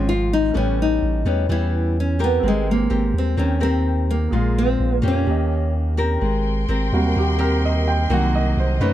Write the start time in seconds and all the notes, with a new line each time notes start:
Already playing: G#1 G#2 F3 G#3 C4 G#4 F5
0.09 F4
0.33 D#4
0.51 A1 A2 G3 B3 C#4 A4
0.55 C#4 B4 G5
0.82 D#4
1.02 A1
1.25 E2 G3 B3 C#4
1.49 E2 E3 G3 B3 C#4 E4
2.00 C#4
2.19 C4 G4 A#4
2.24 B3
2.40 G#1 G#3 C4 A#4
2.46 G#3 G5
2.71 A#3
2.90 G#1 C4 G4 A#4
3.14 D#2
3.18 C4
3.37 D#2 D#3 C4 C#4 G4 A#4
3.59 C4 G4 A#4 G5
3.63 C4
4.11 A#3
4.28 A#1 A#2 A#3 G#4
4.33 G#3 F4 A#4 F5
4.58 C4
4.80 A#1
5.02 F2 A#3 C#4 G4
5.08 C#4
5.24 D#2 D#3 C#4 G4
5.29 A#4 D#5
5.97 C4 G4 A#4
6.21 G#1 G#3 A#4 G5 C6
6.68 G#1 C4 G4 A#4
6.92 D#2 C3 G3 A#3 F#4
7.15 D#2 D#3 G4
7.38 C4 G4 A#4
7.65 D#5
7.88 G5
8.09 C2 C3 D#3 F#3 A#3 D#4 F#4 A#4 D#5
8.13 F#5
8.35 D#5
8.57 C2 C5
8.80 F#2 A3 C#4 D#4 B4